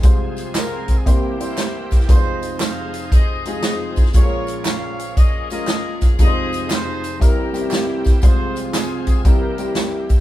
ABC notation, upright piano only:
X:1
M:4/4
L:1/8
Q:"Swing" 1/4=117
K:Fm
V:1 name="Upright piano"
[A,CFc]3 z [B,=EGc] [B,EGc]2 z | [A,EF=Bc]3 z2 [A,EFA]2 z | [A,DFAB]3 z2 [A,DFB]2 z | [A,EFBc]3 z [G,C=EB] [G,CDEG]2 z |
[A,CFc]3 z [G,C=EB] [G,CEG]2 z |]
V:2 name="Upright piano" clef=bass
[C,,C,]4 [C,,C,]4 | [F,,,F,,]8 | [B,,,B,,]8 | [F,,,F,,]4 [C,,C,]4 |
[C,,C,]4 [C,,C,]4 |]